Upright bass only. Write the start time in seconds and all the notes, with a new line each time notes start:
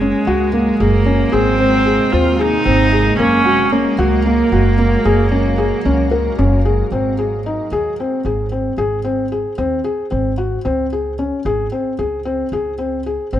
Already playing: F#1
0.27 C#2
0.80 F#1
1.33 G#1
2.13 D#2
2.66 G#1
3.19 F#1
3.98 C#2
4.52 F#1
5.05 F#1
5.85 C#2
6.39 F#1
6.92 G#1
7.71 D#2
8.25 G#1
8.78 G#1
9.58 D#2
10.12 G#1
10.65 C#2
11.45 G#1
11.99 C#2
12.52 C#2
13.33 G#1